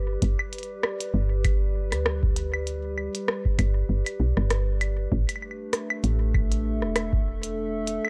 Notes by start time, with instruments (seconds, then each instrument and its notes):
Already playing: fm bass G1, ambient pad G3 G4 B4 D5
0.22 fm bass G1, kick, closed hi-hat
0.39 claves
0.53 closed hi-hat
0.58 closed hi-hat
0.63 closed hi-hat
0.83 cross-stick, claves
1.00 closed hi-hat
1.14 fm bass G1
1.45 kick, closed hi-hat, claves
1.92 fm bass D2, cross-stick, closed hi-hat, claves
2.06 cross-stick
2.23 kick
2.36 closed hi-hat
2.54 claves
2.67 closed hi-hat
2.98 claves
3.15 closed hi-hat
3.28 cross-stick
3.45 kick
3.59 fm bass G1, kick, closed hi-hat, claves
3.89 fm bass G1
4.07 closed hi-hat, claves
4.20 fm bass B1
4.37 fm bass G1, cross-stick
4.51 cross-stick, closed hi-hat
4.81 closed hi-hat, claves
5.12 fm bass A1, ambient pad A3, kick
5.29 closed hi-hat, claves
5.33 ambient pad D4, claves
5.42 claves
5.51 claves
5.73 ambient pad A4, cross-stick, closed hi-hat
5.90 claves
6.04 fm bass A1, ambient pad E5, closed hi-hat
6.34 kick, claves
6.52 closed hi-hat
6.82 fm bass E1, cross-stick
6.96 cross-stick, closed hi-hat, claves
7.13 kick
7.43 closed hi-hat
7.87 closed hi-hat
8.05 claves